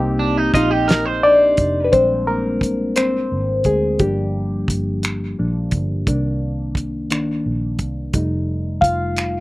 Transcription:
Already playing: fingered electric bass C2, reed electric piano A#3 C4 D#4 G4
0.19 clean electric guitar D4
0.37 clean electric guitar D#4
0.54 fingered electric bass A#1, reed electric piano D#4 D#5, clean electric guitar F4, kick, closed hi-hat
0.71 clean electric guitar G4
0.88 clean electric guitar A#4, snare, closed hi-hat
1.05 clean electric guitar C5
1.23 reed electric piano D4 D5
1.57 fingered electric bass F1, kick, closed hi-hat
1.84 reed electric piano B4
1.92 fingered electric bass A#1, reed electric piano G3 G#3 C4 D4 C5, kick, closed hi-hat
2.27 reed electric piano A#3 A#4
2.61 kick, closed hi-hat
2.96 reed electric piano C4 C5, finger snap, closed hi-hat
3.32 fingered electric bass G#1
3.64 fingered electric bass D2, reed electric piano G#3 G#4, kick, closed hi-hat
3.99 fingered electric bass G1, reed electric piano F3 G3 A#3 D4 G4, kick, closed hi-hat
4.68 fingered electric bass G1, kick, closed hi-hat
5.03 finger snap, closed hi-hat
5.38 fingered electric bass A#1, reed electric piano F3 A#3 D4
5.71 fingered electric bass G1, kick, closed hi-hat
6.07 fingered electric bass C2, reed electric piano D#3 A#3 D4, kick, closed hi-hat
6.75 kick, closed hi-hat
7.10 reed electric piano D#3 A#3 D4, finger snap, closed hi-hat
7.46 fingered electric bass A#1
7.79 fingered electric bass C2, kick, closed hi-hat
8.13 fingered electric bass F1, reed electric piano G3 A3 D#4, kick, closed hi-hat
8.81 fingered electric bass F1, reed electric piano F4 F5, kick, closed hi-hat
9.17 finger snap, closed hi-hat

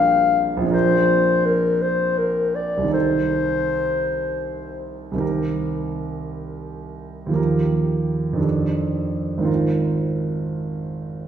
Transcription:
Already playing: grand piano A#1 G3 C4 D4 A#4, clarinet F5
0.57 grand piano A#1 F3
0.64 grand piano C4 D4
0.71 grand piano A#4, clarinet C5
1.45 clarinet A#4
1.82 clarinet C5
2.18 clarinet A#4
2.55 clarinet D5
2.77 grand piano C2
2.81 grand piano D#3 C4
2.88 grand piano D#4 A4
2.94 clarinet C5
5.12 grand piano C2 D#3
5.16 grand piano C4 G4
5.20 grand piano A#4
7.26 grand piano D#2 F3
7.31 grand piano A#3 G4
7.35 grand piano A#4
8.33 grand piano F2 D#3 D4
8.39 grand piano G4 A4
9.38 grand piano G#1 D#3
9.43 grand piano C4 F4
9.47 grand piano A#4

